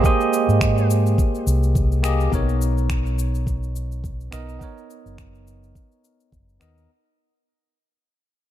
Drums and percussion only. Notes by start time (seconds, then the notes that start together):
0.04 kick, cabasa
0.21 cabasa
0.33 cabasa
0.49 cabasa
0.61 finger snap, kick, cabasa
0.78 cabasa
0.90 cabasa
1.06 cabasa
1.18 kick, cabasa
1.35 cabasa
1.47 cabasa
1.63 cabasa
1.75 kick, cabasa
1.92 cabasa
2.04 finger snap, cabasa
2.20 cabasa
2.32 kick, cabasa
2.49 cabasa
2.62 cabasa
2.78 cabasa
2.90 finger snap, kick, cabasa
3.06 cabasa
3.19 cabasa
3.35 cabasa
3.47 kick, cabasa
3.63 cabasa
3.76 cabasa
3.92 cabasa
4.04 kick, cabasa
4.20 cabasa
4.32 finger snap, cabasa
4.49 cabasa
4.61 kick, cabasa
4.78 cabasa
4.90 cabasa
5.06 cabasa
5.18 finger snap, kick, cabasa
5.35 cabasa
5.47 cabasa
5.63 cabasa
5.75 kick, cabasa
5.92 cabasa
6.04 cabasa
6.20 cabasa
6.32 kick, cabasa
6.49 cabasa
6.61 finger snap, cabasa
6.78 cabasa